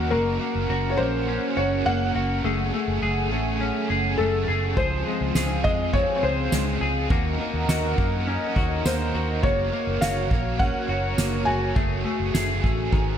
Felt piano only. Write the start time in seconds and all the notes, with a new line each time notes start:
0.11 A#4
0.90 C#5
0.97 C5
1.57 C#5
1.86 F#5
4.17 A4
4.77 C5
5.64 D#5
5.93 C#5
6.16 C#5
6.23 C5
8.86 C5
9.43 C#5
10.01 F5
10.59 F#5
11.45 G#5